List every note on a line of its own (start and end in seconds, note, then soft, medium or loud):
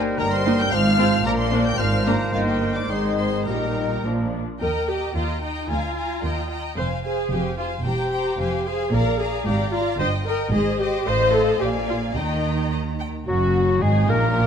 0.00 0.18 G3 medium
0.00 0.18 A#3 soft
0.00 0.18 D#4 soft
0.00 0.18 A#4 soft
0.00 0.20 C5 medium
0.00 0.16 D#5 soft
0.17 0.62 G1 medium
0.17 0.63 G2 medium
0.17 0.45 G3 medium
0.17 0.74 A#4 soft
0.17 0.45 A#4 medium
0.17 0.25 A#4 medium
0.17 0.44 D#5 medium
0.17 0.32 A#5 medium
0.31 0.57 C5 medium
0.31 0.59 C6 medium
0.45 0.72 G3 medium
0.45 0.58 A#3 medium
0.45 0.58 D#4 medium
0.45 0.72 A#4 soft
0.45 0.71 D#5 soft
0.60 0.73 G5 medium
0.60 0.72 G6 medium
0.71 1.17 G#1 medium
0.71 1.16 G#2 medium
0.71 0.99 F3 soft
0.71 1.25 C5 medium
0.71 0.98 C5 medium
0.71 1.25 F5 medium
0.71 0.98 F5 medium
0.71 1.26 F6 medium
0.98 1.25 F3 medium
0.98 1.11 C4 medium
0.98 1.11 F4 medium
0.98 1.26 C5 soft
0.98 1.25 F5 soft
1.24 1.69 A#1 medium
1.24 1.69 A#2 medium
1.24 1.52 F3 soft
1.24 1.31 A#4 medium
1.24 1.52 A#4 soft
1.24 1.78 D5 medium
1.24 1.51 D5 soft
1.24 1.31 A#5 medium
1.39 1.65 C5 medium
1.39 1.65 C6 medium
1.52 1.78 F3 soft
1.52 1.64 A#3 medium
1.52 1.64 D4 medium
1.52 1.79 A#4 soft
1.52 1.78 D5 soft
1.66 1.79 G5 medium
1.66 1.79 G6 medium
1.77 2.24 G#1 medium
1.77 2.23 G#2 medium
1.77 2.05 F3 soft
1.77 2.05 A#4 soft
1.77 3.13 C5 medium
1.77 2.04 D5 soft
1.77 2.06 F5 soft
1.77 2.06 F6 medium
2.05 2.32 F3 soft
2.05 2.18 A#3 medium
2.05 2.18 D4 medium
2.05 2.14 A#4 medium
2.05 2.33 A#4 soft
2.05 2.32 D5 soft
2.05 2.33 A#5 medium
2.32 2.84 G1 soft
2.32 2.85 G2 soft
2.32 2.73 D#3 soft
2.32 2.85 A#3 soft
2.32 2.85 D#4 soft
2.32 2.46 F4 medium
2.32 2.92 A#4 soft
2.32 2.85 D#5 soft
2.32 2.39 F5 medium
2.47 2.75 G4 soft
2.47 2.74 G5 soft
2.75 2.89 D5 soft
2.75 2.89 D6 medium
2.89 3.45 G#1 soft
2.89 3.45 G#2 soft
2.89 3.45 D#3 soft
2.89 3.46 G#3 soft
2.89 3.45 D#4 soft
2.89 3.50 G#4 soft
2.89 3.15 C5 soft
2.89 3.21 D#5 soft
2.89 3.15 C6 soft
3.17 3.45 C5 soft
3.17 3.45 C6 soft
3.45 4.03 A#1 soft
3.45 4.02 A#2 soft
3.45 4.06 D#3 soft
3.45 4.04 G3 soft
3.45 4.03 D#4 soft
3.45 3.88 G4 soft
3.45 4.29 A#4 soft
3.45 4.03 A#4 soft
3.45 4.03 D#5 soft
3.45 4.02 A#5 soft
4.04 4.40 A#1 soft
4.04 4.40 A#2 soft
4.04 4.41 F3 soft
4.04 4.33 F3 soft
4.04 4.41 D4 soft
4.04 4.18 F4 soft
4.04 4.33 D5 soft
4.61 5.07 D#2 soft
4.61 4.87 A#4 medium
4.61 4.87 D#5 soft
4.61 4.88 G5 soft
4.61 4.87 A#5 soft
4.88 5.16 G4 medium
4.88 5.14 D#5 soft
4.88 5.14 G5 soft
4.88 5.14 A#5 soft
5.15 5.61 D#2 soft
5.15 5.42 F4 soft
5.15 5.41 D#5 soft
5.15 5.41 G5 soft
5.15 5.42 A#5 soft
5.41 5.68 D#4 soft
5.41 5.69 D#5 soft
5.41 5.69 G5 soft
5.41 5.69 A#5 soft
5.68 6.15 D2 soft
5.68 6.50 F4 medium
5.68 5.95 F5 soft
5.68 5.95 G#5 soft
5.68 5.96 A#5 soft
5.96 6.23 F5 soft
5.96 6.23 G#5 soft
5.96 6.23 A#5 soft
6.23 6.68 D#2 soft
6.23 6.69 D#2 soft
6.23 6.48 D#5 soft
6.23 6.49 G5 soft
6.23 6.51 A#5 soft
6.49 6.76 D#5 soft
6.49 6.77 G5 soft
6.49 6.78 A#5 soft
6.77 7.23 F1 soft
6.77 7.23 F2 soft
6.77 6.85 C5 medium
6.77 7.02 C5 soft
6.77 7.02 F5 soft
6.77 7.04 G#5 soft
7.03 7.31 G#4 medium
7.03 7.29 C5 soft
7.03 7.29 F5 soft
7.03 7.31 G#5 soft
7.30 7.76 F1 soft
7.30 7.77 F2 soft
7.30 7.59 G4 medium
7.30 7.55 C5 soft
7.30 7.55 F5 soft
7.30 7.57 G#5 soft
7.56 7.66 F4 medium
7.56 7.83 C5 soft
7.56 7.84 F5 soft
7.56 7.85 G#5 soft
7.84 8.30 E1 medium
7.84 8.30 E2 soft
7.84 8.64 G4 medium
7.84 8.10 C5 soft
7.84 8.10 G5 soft
7.84 8.12 A#5 soft
8.11 8.37 C5 soft
8.11 8.38 G5 soft
8.11 8.40 A#5 soft
8.38 8.83 F1 soft
8.38 8.84 F2 medium
8.38 8.64 C5 soft
8.38 8.64 F5 soft
8.42 8.67 G#5 soft
8.65 8.93 G#4 medium
8.65 8.92 C5 soft
8.65 8.91 F5 soft
8.65 8.93 G#5 soft
8.92 9.37 A#1 medium
8.92 9.37 A#2 medium
8.92 9.19 A#4 medium
8.92 9.17 D5 medium
8.92 9.18 F5 medium
8.92 9.20 A#5 soft
9.19 9.46 G#4 medium
9.19 9.45 D5 soft
9.19 9.45 F5 soft
9.19 9.46 A#5 soft
9.45 9.90 G#1 medium
9.45 9.91 G#2 medium
9.45 9.72 G4 medium
9.45 9.71 D5 soft
9.45 9.71 F5 soft
9.45 9.72 A#5 soft
9.72 9.99 F4 medium
9.72 9.98 D5 medium
9.72 9.99 F5 soft
9.72 9.99 A#5 soft
9.98 10.43 G1 medium
9.98 10.44 G2 medium
9.98 10.07 C5 medium
9.98 10.26 D#5 medium
9.98 10.24 G5 medium
10.25 10.52 A#4 medium
10.25 10.51 D#5 soft
10.25 10.52 G5 soft
10.52 10.97 G#1 medium
10.52 10.97 G#2 medium
10.52 10.79 G#4 medium
10.52 10.78 C5 soft
10.52 10.78 D#5 medium
10.52 10.77 D#5 medium
10.79 11.06 G4 medium
10.79 11.05 C5 medium
10.79 11.05 D#5 soft
10.79 11.05 D#5 medium
11.05 11.57 A1 medium
11.05 11.56 A2 medium
11.05 11.57 C5 medium
11.05 11.34 C5 medium
11.05 11.57 D#5 medium
11.05 11.57 F5 medium
11.34 11.61 A4 medium
11.60 12.16 A#1 soft
11.60 12.15 A#2 medium
11.60 11.68 G4 medium
11.60 12.16 D5 soft
11.60 12.16 F5 soft
11.60 12.16 G#5 medium
11.88 11.96 F4 medium
12.15 13.08 D#2 soft
12.15 13.08 D#3 soft
12.15 12.71 D#4 soft
12.15 12.66 D#5 soft
12.15 12.66 G5 soft
12.15 13.08 A#5 soft
12.71 12.79 D#5 soft
12.99 13.07 G5 soft
13.27 13.78 F#1 soft
13.27 13.78 F#2 medium
13.27 13.84 F#3 medium
13.27 13.79 F#3 medium
13.27 13.78 F#4 medium
13.27 13.78 F#4 soft
13.27 13.83 F#4 medium
13.27 13.84 F#4 medium
13.27 13.79 F#5 soft
13.80 14.09 G#1 medium
13.80 14.09 G#2 medium
13.80 14.09 G#3 medium
13.80 14.08 G#3 medium
13.80 14.33 D#4 medium
13.80 14.08 G#4 medium
13.80 14.09 G#4 medium
13.80 14.12 G#4 medium
13.80 14.08 G#5 medium
14.07 14.47 A#1 medium
14.07 14.47 A#2 medium
14.07 14.47 A#3 medium
14.07 14.47 A#4 medium
14.07 14.47 A#5 medium
14.36 14.47 D4 medium